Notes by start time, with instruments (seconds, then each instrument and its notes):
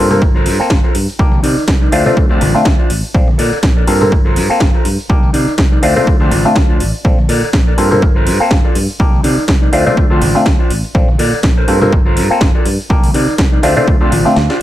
Already playing: fingered electric bass G2, clean electric guitar F4 A4 A#4 C5
0.10 clav A#3 C4 F4 A4, low conga, shaker
0.22 fingered electric bass G1, kick, shaker
0.34 clean electric guitar F4 A4 A#4 C5, shaker
0.46 fingered electric bass G2, open hi-hat
0.59 clav A#3 C4 F4 A4, muted fingered electric bass stroke, shaker
0.70 fingered electric bass G1, kick, snare
0.83 clean electric guitar F4 A4 A#4 C5, shaker
0.95 fingered electric bass G2, open hi-hat
1.08 muted clean electric guitar stroke, shaker
1.19 fingered electric bass C2, clav A#3 D4 D#4 G4, kick
1.32 high conga, shaker
1.43 fingered electric bass C3, clean electric guitar D#4 A#4 D5, open hi-hat
1.57 muted fingered electric bass stroke, shaker
1.67 fingered electric bass C2, kick, snare, shaker
1.81 clean electric guitar D#4 A#4 D5, shaker
1.92 fingered electric bass D2, clav A3 C4 D4 F4, clean electric guitar F4 C5 D5, open hi-hat
2.06 clav A3 C4 D4 F4, low conga, shaker
2.17 fingered electric bass D2, kick, shaker
2.29 clav A3 C4 D4 F4, clean electric guitar F4 C5 D5, high conga, shaker
2.41 fingered electric bass A1, clean electric guitar A5, open hi-hat, high conga, low conga
2.55 clav A3 C4 D4 F4, muted fingered electric bass stroke, shaker
2.65 fingered electric bass D2, kick, snare
2.78 clean electric guitar F4 C5 D5, shaker
2.90 fingered electric bass A1, open hi-hat
3.03 muted clean electric guitar stroke, shaker
3.14 fingered electric bass A#1, clav C4 D4 F4 A4, kick
3.28 high conga, shaker
3.38 fingered electric bass A#2, clean electric guitar A4 A#4 D5, open hi-hat
3.52 muted fingered electric bass stroke, shaker
3.63 fingered electric bass A#1, kick, snare
3.76 clean electric guitar A4 A#4 D5, shaker
3.87 fingered electric bass G2, clav A#3 C4 F4 A4, clean electric guitar F4 A4 A#4 C5, open hi-hat
4.01 clav A#3 C4 F4 A4, low conga, shaker
4.11 fingered electric bass G1, kick, shaker
4.25 clean electric guitar F4 A4 A#4 C5, shaker
4.36 fingered electric bass G2, open hi-hat
4.50 clav A#3 C4 F4 A4, muted fingered electric bass stroke, shaker
4.60 fingered electric bass G1, kick, snare
4.74 clean electric guitar F4 A4 A#4 C5, shaker
4.85 fingered electric bass G2, open hi-hat
4.98 muted clean electric guitar stroke, shaker
5.09 fingered electric bass C2, clav A#3 D4 D#4 G4, kick, shaker
5.23 high conga, shaker
5.33 fingered electric bass C3, clean electric guitar D#4 A#4 D5, open hi-hat
5.48 muted fingered electric bass stroke, shaker
5.58 fingered electric bass C2, kick, snare
5.71 clean electric guitar D#4 A#4 D5, shaker
5.82 fingered electric bass D2, clav A3 C4 D4 F4, clean electric guitar F4 C5 D5, open hi-hat
5.96 clav A3 C4 D4 F4, low conga, shaker
6.06 fingered electric bass D2, kick, shaker
6.20 clav A3 C4 D4 F4, clean electric guitar F4 C5 D5, high conga, shaker
6.31 fingered electric bass A1, clean electric guitar A5, open hi-hat, high conga, low conga
6.45 clav A3 C4 D4 F4, muted fingered electric bass stroke, shaker
6.55 fingered electric bass D2, clean electric guitar F5, kick, snare
6.69 clean electric guitar F4 C5 D5, shaker
6.80 fingered electric bass A1, clean electric guitar D5, open hi-hat
6.93 muted clean electric guitar stroke, shaker
7.04 fingered electric bass A#1, clav C4 D4 F4 A4, kick
7.18 high conga, shaker
7.29 fingered electric bass A#2, clean electric guitar A4 A#4 D5, open hi-hat
7.43 muted fingered electric bass stroke, shaker
7.53 fingered electric bass A#1, kick, snare
7.67 clean electric guitar A4 A#4 D5, shaker
7.77 fingered electric bass G2, clav A#3 C4 F4 A4, clean electric guitar F4 A4 A#4 C5, open hi-hat
7.91 clav A#3 C4 F4 A4, low conga, shaker
8.02 fingered electric bass G1, kick, shaker
8.15 clean electric guitar F4 A4 A#4 C5, shaker
8.27 fingered electric bass G2, open hi-hat
8.40 clav A#3 C4 F4 A4, muted fingered electric bass stroke, shaker
8.51 fingered electric bass G1, kick, snare
8.64 clean electric guitar F4 A4 A#4 D5, shaker
8.75 fingered electric bass G2, open hi-hat
8.88 muted clean electric guitar stroke, shaker
8.99 fingered electric bass C2, clav A#3 D4 D#4 G4, kick, shaker
9.13 high conga, shaker
9.23 fingered electric bass C3, clean electric guitar D#4 A#4 D5, open hi-hat
9.38 muted fingered electric bass stroke, shaker
9.48 fingered electric bass C2, kick, snare
9.61 clean electric guitar D#4 A#4 D5, shaker
9.72 fingered electric bass D2, clav A3 C4 D4 F4, clean electric guitar F4 C5 D5, open hi-hat
9.86 clav A3 C4 D4 F4, low conga, shaker
9.97 fingered electric bass D2, kick, shaker
10.10 clav A3 C4 D4 F4, clean electric guitar F4 C5 D5, high conga, shaker
10.21 fingered electric bass A1, open hi-hat, high conga, low conga
10.35 clav A3 C4 D4 F4, muted fingered electric bass stroke, shaker
10.46 fingered electric bass D2, kick, snare
10.59 clean electric guitar F4 C5 D5, shaker
10.70 fingered electric bass A1, open hi-hat
10.84 muted clean electric guitar stroke, shaker
10.94 fingered electric bass A#1, clav C4 D4 F4 A4, kick, shaker
11.08 high conga, shaker
11.18 fingered electric bass A#2, clean electric guitar A4 A#4 D5, open hi-hat
11.33 muted fingered electric bass stroke, shaker
11.43 fingered electric bass A#1, kick, snare
11.57 clean electric guitar A4 A#4 C5, shaker
11.67 fingered electric bass G2, clav A#3 C4 F4 A4, clean electric guitar F4 A4 A#4 C5, open hi-hat
11.81 clav A#3 C4 F4 A4, low conga, shaker
11.92 fingered electric bass G1, kick
12.05 clean electric guitar F4 A4 A#4 C5, shaker
12.17 fingered electric bass G2, open hi-hat
12.30 clav A#3 C4 F4 A4, muted fingered electric bass stroke, shaker
12.41 fingered electric bass G1, kick, snare, shaker
12.54 clean electric guitar F4 A4 A#4 D5, shaker
12.65 fingered electric bass G2, open hi-hat
12.79 muted clean electric guitar stroke, shaker
12.90 fingered electric bass C2, clav A#3 D4 D#4 G4, kick, shaker
13.03 open hi-hat, high conga, shaker
13.14 fingered electric bass C3, clean electric guitar D#4 A#4 D5, open hi-hat
13.28 muted fingered electric bass stroke, shaker
13.38 fingered electric bass C2, kick, snare
13.52 clean electric guitar D#4 A#4 D5, shaker
13.63 fingered electric bass D2, clav A3 C4 D4 F4, clean electric guitar F4 C5 D5, snare, open hi-hat
13.76 clav A3 C4 D4 F4, low conga, shaker
13.87 fingered electric bass D2, kick, shaker
14.01 clav A3 C4 D4 F4, clean electric guitar F4 C5 D5, high conga, shaker
14.11 fingered electric bass A1, open hi-hat, high conga, low conga
14.25 clav A3 C4 D4 F4, muted fingered electric bass stroke, shaker
14.36 fingered electric bass D2, snare, shaker
14.49 clean electric guitar F4 C5 D5, snare, shaker